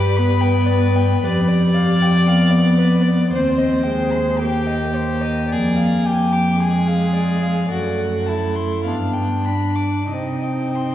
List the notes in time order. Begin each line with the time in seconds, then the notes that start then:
Already playing: G2 G3 B4 D6
0.17 B3 B5
0.41 G5
0.66 D5
0.95 G5
1.22 F2 G3 B4 D5
1.48 D5
1.74 F5
2.02 G5
2.27 B3 F5
2.51 D5
2.78 B4
3.03 D5
3.31 C5
3.35 D#2 C4 C5
3.58 D#5
3.83 G5
3.88 G#3
4.12 C6
4.38 G5
4.43 A#3 G4
4.66 D#5
4.95 C5
5.21 D#5
5.49 F2 D5
5.53 G#4
5.76 F5
6.05 G4 G#5
6.32 D6
6.60 G#3 G#4 G#5
6.87 F5
7.13 D5
7.42 F5
7.69 F#2 A3 F#4 D5
7.99 F#5
8.26 E4 A5
8.55 C6
8.85 G2 B3 D4 F5
9.13 G5
9.45 D4 B5
9.75 D6
10.10 C4 D#4 D#5
10.14 C3
10.42 G5
10.75 C6